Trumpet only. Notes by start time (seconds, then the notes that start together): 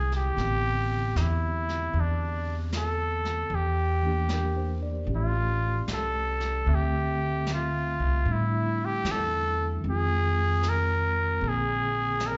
Already playing: G#4
0.16 G4
1.17 D#4
1.21 E4
2.00 D4
2.77 A4
3.55 G4
5.16 F4
5.94 A4
6.75 G4
7.54 F4
8.32 E4
8.85 G4
9.11 A4
9.90 G#4
10.69 A#4
11.48 G#4
12.27 A#4